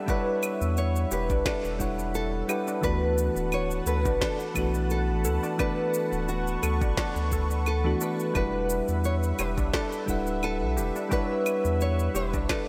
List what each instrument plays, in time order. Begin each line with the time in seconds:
Already playing: synth keys G3 D4 E4 B4 F#5, analog synth pad B4 E5
0.06 synth keys G3 D4 E4 F#5, steel pan D4, nylon-string guitar B4, kick, shaker
0.11 synth keys C#5
0.43 claves, shaker
0.61 sub bass E2, shaker
0.77 nylon-string guitar C#5, shaker
0.96 shaker
1.11 sub bass E1, steel pan G4, nylon-string guitar B4, shaker
1.30 sub bass B1, steel pan D4, kick, shaker
1.46 steel pan D4, nylon-string guitar A4, kick, snare, claves, shaker
1.64 sub bass E1, shaker
1.79 synth keys G3 D4 E4 C#5 F#5, kick, shaker
1.99 shaker
2.15 nylon-string guitar A4, shaker
2.48 synth keys G3 D4 E4 B4 F#5, steel pan G4, claves, shaker
2.68 steel pan D4, shaker
2.81 sub bass D2, synth keys E3 A3 B3 D4, steel pan D4, nylon-string guitar B4, analog synth pad F#5 A5, kick, shaker
2.86 synth keys F#4
3.18 shaker
3.36 sub bass D1, shaker
3.52 nylon-string guitar C#5, claves, shaker
3.71 shaker
3.86 sub bass D2, steel pan A4, nylon-string guitar B4, shaker
4.05 sub bass A1, steel pan D4, kick, shaker
4.21 steel pan D4, nylon-string guitar A4, kick, snare, shaker
4.40 shaker
4.54 sub bass B1, synth keys E3 A3 B3 D4, kick, claves, shaker
4.59 synth keys F#4
4.74 shaker
4.90 nylon-string guitar A4, shaker
5.09 sub bass A1
5.25 sub bass D2, steel pan A4, shaker
5.43 steel pan D4, shaker
5.58 synth keys E3 A3 B3 D4, steel pan D4, nylon-string guitar B4, analog synth pad C#6, kick, claves, shaker
5.62 synth keys A4
5.94 shaker
6.12 sub bass D1, shaker
6.29 nylon-string guitar F#4, shaker
6.47 shaker
6.63 sub bass D2, steel pan A4, claves, shaker
6.81 sub bass A1, steel pan D4, kick, shaker
6.97 steel pan D4, nylon-string guitar A4, kick, snare, shaker
7.16 sub bass D2, shaker
7.32 steel pan A4, kick, shaker
7.51 shaker
7.66 nylon-string guitar A4, claves, shaker
7.84 synth keys E3 A3 B3 D4 F#4
8.01 synth keys E3 A3 B3 D4 B4, steel pan D4, shaker
8.20 shaker
8.34 sub bass E1, synth keys G3 D4 E4 F#5, steel pan D4, nylon-string guitar B4, analog synth pad E5, kick, claves, shaker
8.38 synth keys B4
8.70 shaker
8.88 sub bass E2, shaker
9.04 nylon-string guitar C#5, shaker
9.23 shaker
9.39 sub bass E1, steel pan G4, nylon-string guitar B4, claves, shaker
9.57 sub bass B1, steel pan D4, kick, shaker
9.74 steel pan D4, nylon-string guitar A4, kick, snare, shaker
9.92 shaker
10.06 sub bass D1, synth keys G3 D4 E4 F#5, kick, shaker
10.11 synth keys B4
10.27 shaker
10.43 nylon-string guitar A4, claves, shaker
10.61 sub bass B1
10.77 sub bass E1, steel pan G4, shaker
10.96 steel pan D4, shaker
11.09 synth keys G3 D4 E4 F#5, steel pan D4, nylon-string guitar B4, kick, shaker
11.14 synth keys C#5
11.46 claves, shaker
11.65 sub bass E2, shaker
11.81 nylon-string guitar C#5, shaker
11.99 shaker
12.15 sub bass E1, steel pan G4, nylon-string guitar B4, shaker
12.34 sub bass B1, steel pan D4, kick, shaker
12.49 steel pan D4, nylon-string guitar A4, kick, snare, claves, shaker